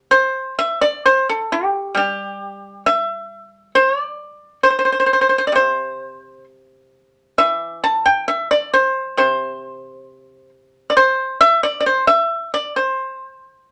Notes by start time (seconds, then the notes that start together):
Already playing: C3
0.11 C5
0.59 E5
0.81 D5
1.05 C5
1.29 A4
1.52 G4
1.95 G3 G4
2.86 E5
3.75 C5
4.00 D5
4.63 C5
4.70 C5
4.79 C5
4.85 C5
4.92 C5
5.00 C5
5.06 C5
5.13 C5
5.21 C5
5.29 C5
5.38 C5
5.47 D5
5.52 C3 C5
7.38 E3 E5
7.84 A5
8.05 G5
8.28 E5
8.51 D5
8.73 C5
9.17 C3 C5
10.90 D5
10.97 C5
11.41 E5
11.63 D5
11.80 D5
11.86 C5
12.07 E5
12.54 D5
12.76 C5